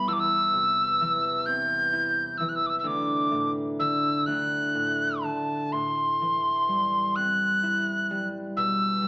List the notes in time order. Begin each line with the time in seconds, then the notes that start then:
Already playing: B2 E3 G3 B3
0.08 E2 E6
0.13 D6
0.20 E6
0.54 C3
1.01 E3
1.46 C4 G6
1.93 E4
2.37 E3 E6
2.49 F#6
2.55 E6
2.66 D6 E6
2.79 E6
2.84 D2 D6
3.31 A2
3.79 D3 E6
4.26 D2 F#6
4.75 A2
5.22 D3 A5
5.72 A2 C6
6.21 E3
6.68 G3
7.16 C4 F#6
7.63 E4
8.11 G3
8.57 B2 E6
9.02 G3